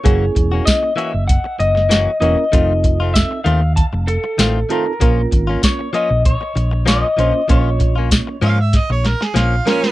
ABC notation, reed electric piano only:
X:1
M:4/4
L:1/8
Q:"Swing 16ths" 1/4=97
K:Bbm
V:1 name="Reed electric piano"
[B,D_FA]3 z4 [B,DFB] | [CEF=A]3 z4 [CEFA] | [B,DFB]3 z4 [B,DFc] | [B,DFd]3 z4 [B,DFB] |]